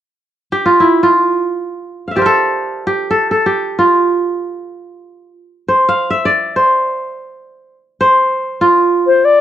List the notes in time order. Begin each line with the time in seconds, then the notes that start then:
0.52 G4
0.66 F4
0.80 E4
1.03 F4
2.08 E5 F5
2.16 G4 C5 D5
2.22 A#4
2.26 A4
2.87 G4
3.11 A4
3.31 A4
3.46 G4
3.79 F4
5.68 C5
5.89 F5
6.10 E5
6.25 D5
6.56 C5
8.01 C5
8.61 F4
9.07 C5
9.25 D5